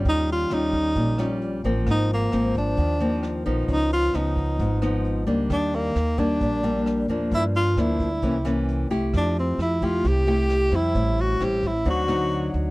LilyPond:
<<
  \new Staff \with { instrumentName = "Tenor saxophone" } { \time 4/4 \key ees \lydian \tempo 4 = 132 ees'8 f'8 ees'2 r4 | ees'8 bes4 d'2 r8 | dis'8 eis'8 dis'2 r4 | d'8 bes4 d'2 r8 |
e'8 f'8 e'2 r4 | d'8 c'8 e'8 f'8 g'4. e'8~ | e'8 fis'8 g'8 e'8 fis'4. r8 | }
  \new Staff \with { instrumentName = "Nylon-string guitar" } { \time 4/4 \key ees \lydian << { <g cis' f'>4 <g des' f'>4. <g des' f'>4 <f bes c'>8~ | <f bes c'>4 <f bes c'>4. <f bes c'>4 <f b ees'>8~ | <f b ees'>4 <eis b dis'>4. <eis b dis'>4 <g bes d'>8~ | <g bes d'>4 r8 <g bes d'>4 <g bes d'>4 <f bes d'>8~ |
<f bes d'>4 <f bes d'>8 r8 <e bes des'>8 <e bes des'>4 <a e' g'>8~ | <a e' g'>4. <a e' g'>4 <a e' g'>4 <g c' e'>8~ | <g c' e'>4 <g c' e'>8 r8 <fis c' ees'>8 <fis c' ees'>4. | } \\ { ees2 bes,2 | aes,2 ees2 | cis2 gis,2 | ees2 bes,2 |
g,2 c2 | f2 c2 | a,2 d2 | } >> }
  \new Staff \with { instrumentName = "Upright bass" } { \clef bass \time 4/4 \key ees \lydian ees,4 ees,4 bes,,4. a,,8 | aes,,4 aes,,4 ees,4. bes,,8 | cis,4 cis,4 gis,,4. cis,8 | ees,4 ees,4 bes,,4. ees,8 |
g,4 d,4 c,4. c,8 | f,4 f,4 c,4. f,8 | a,,4 a,,4 d,4. d,8 | }
  \new DrumStaff \with { instrumentName = "Drums" } \drummode { \time 4/4 <hh bd>8 hh8 <hh ss>8 <hh bd>8 <hh bd>8 <hh ss>8 hh8 hh8 | <hh bd ss>8 hh8 <hh ss>8 <hh bd>8 <hh bd>8 hh8 <hh ss>8 hh8 | <hh bd>8 hh8 <hh ss>8 <hh bd>8 <hh bd>8 <hh ss>8 hh8 hh8 | <hh bd ss>8 hh8 <hh ss>8 <hh bd>8 <hh bd>8 hh8 <hh ss>8 hh8 |
<hh bd>8 hh8 <hh ss>8 <hh bd>8 <hh bd>8 <hh ss>8 hh8 hh8 | <hh bd ss>8 hh8 <hh ss>8 <hh bd>8 <hh bd>8 hh8 <hh ss>8 hh8 | <hh bd>8 hh8 <hh ss>8 <hh bd>8 <hh bd>8 <hh ss>8 hh8 hh8 | }
>>